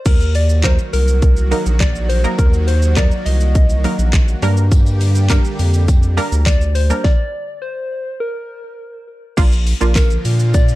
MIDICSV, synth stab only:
0, 0, Header, 1, 2, 480
1, 0, Start_track
1, 0, Tempo, 582524
1, 46, Time_signature, 4, 2, 24, 8
1, 8860, End_track
2, 0, Start_track
2, 0, Title_t, "Synth stab"
2, 0, Program_c, 0, 62
2, 527, Note_on_c, 0, 54, 76
2, 529, Note_on_c, 0, 58, 73
2, 529, Note_on_c, 0, 63, 70
2, 532, Note_on_c, 0, 70, 89
2, 999, Note_off_c, 0, 54, 0
2, 1000, Note_off_c, 0, 58, 0
2, 1000, Note_off_c, 0, 63, 0
2, 1002, Note_off_c, 0, 70, 0
2, 1246, Note_on_c, 0, 54, 84
2, 1247, Note_on_c, 0, 58, 76
2, 1247, Note_on_c, 0, 63, 75
2, 1249, Note_on_c, 0, 70, 88
2, 1640, Note_off_c, 0, 54, 0
2, 1641, Note_off_c, 0, 58, 0
2, 1641, Note_off_c, 0, 63, 0
2, 1641, Note_off_c, 0, 70, 0
2, 1845, Note_on_c, 0, 54, 81
2, 1846, Note_on_c, 0, 58, 75
2, 1847, Note_on_c, 0, 63, 77
2, 1849, Note_on_c, 0, 70, 89
2, 2239, Note_off_c, 0, 54, 0
2, 2240, Note_off_c, 0, 58, 0
2, 2241, Note_off_c, 0, 63, 0
2, 2241, Note_off_c, 0, 70, 0
2, 2444, Note_on_c, 0, 54, 81
2, 2445, Note_on_c, 0, 58, 74
2, 2447, Note_on_c, 0, 63, 72
2, 2448, Note_on_c, 0, 70, 89
2, 2918, Note_off_c, 0, 54, 0
2, 2918, Note_off_c, 0, 58, 0
2, 2919, Note_off_c, 0, 63, 0
2, 2920, Note_off_c, 0, 70, 0
2, 3166, Note_on_c, 0, 54, 78
2, 3168, Note_on_c, 0, 58, 72
2, 3169, Note_on_c, 0, 63, 69
2, 3171, Note_on_c, 0, 70, 87
2, 3560, Note_off_c, 0, 54, 0
2, 3561, Note_off_c, 0, 58, 0
2, 3561, Note_off_c, 0, 63, 0
2, 3562, Note_off_c, 0, 70, 0
2, 3646, Note_on_c, 0, 55, 95
2, 3647, Note_on_c, 0, 58, 92
2, 3648, Note_on_c, 0, 62, 90
2, 3650, Note_on_c, 0, 70, 105
2, 4222, Note_off_c, 0, 55, 0
2, 4222, Note_off_c, 0, 58, 0
2, 4223, Note_off_c, 0, 62, 0
2, 4224, Note_off_c, 0, 70, 0
2, 4366, Note_on_c, 0, 55, 95
2, 4367, Note_on_c, 0, 58, 86
2, 4369, Note_on_c, 0, 62, 85
2, 4369, Note_on_c, 0, 70, 104
2, 4839, Note_off_c, 0, 55, 0
2, 4839, Note_off_c, 0, 58, 0
2, 4840, Note_off_c, 0, 62, 0
2, 4840, Note_off_c, 0, 70, 0
2, 5084, Note_on_c, 0, 55, 98
2, 5086, Note_on_c, 0, 58, 91
2, 5086, Note_on_c, 0, 62, 95
2, 5088, Note_on_c, 0, 70, 110
2, 5479, Note_off_c, 0, 55, 0
2, 5480, Note_off_c, 0, 58, 0
2, 5480, Note_off_c, 0, 62, 0
2, 5481, Note_off_c, 0, 70, 0
2, 5684, Note_on_c, 0, 55, 80
2, 5686, Note_on_c, 0, 58, 73
2, 5687, Note_on_c, 0, 62, 76
2, 5688, Note_on_c, 0, 70, 87
2, 5805, Note_off_c, 0, 55, 0
2, 5806, Note_off_c, 0, 58, 0
2, 5807, Note_off_c, 0, 62, 0
2, 5807, Note_off_c, 0, 70, 0
2, 7722, Note_on_c, 0, 58, 100
2, 7723, Note_on_c, 0, 62, 89
2, 7725, Note_on_c, 0, 65, 109
2, 7960, Note_off_c, 0, 58, 0
2, 7961, Note_off_c, 0, 62, 0
2, 7962, Note_off_c, 0, 65, 0
2, 8081, Note_on_c, 0, 58, 78
2, 8083, Note_on_c, 0, 62, 72
2, 8085, Note_on_c, 0, 65, 90
2, 8635, Note_off_c, 0, 58, 0
2, 8636, Note_off_c, 0, 62, 0
2, 8637, Note_off_c, 0, 65, 0
2, 8860, End_track
0, 0, End_of_file